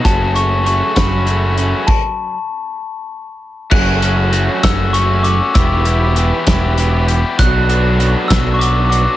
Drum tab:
CC |------|x-----|x-----|------|
HH |xxxxxx|------|-xxxxx|xxxxxx|
SD |---o--|------|---o--|---o--|
BD |o--o--|o-----|o--o--|o--o--|

CC |------|
HH |xxxxxx|
SD |---o--|
BD |o--o--|